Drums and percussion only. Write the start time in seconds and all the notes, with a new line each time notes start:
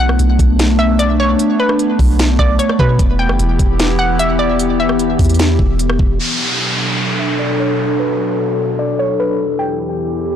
0.09 cross-stick
0.19 closed hi-hat
0.39 kick, closed hi-hat
0.59 snare, closed hi-hat
0.99 closed hi-hat
1.39 closed hi-hat
1.69 cross-stick
1.79 closed hi-hat
1.99 kick, open hi-hat
2.19 snare, closed hi-hat
2.39 kick
2.59 closed hi-hat
2.69 cross-stick
2.79 kick
2.99 kick, closed hi-hat
3.29 cross-stick
3.39 closed hi-hat
3.59 kick, closed hi-hat
3.79 snare, closed hi-hat
4.19 closed hi-hat
4.59 closed hi-hat
4.89 cross-stick
4.99 closed hi-hat
5.19 kick, closed hi-hat, open hi-hat
5.24 closed hi-hat
5.29 closed hi-hat
5.34 closed hi-hat
5.39 snare, closed hi-hat
5.59 kick
5.79 closed hi-hat
5.90 cross-stick
5.99 kick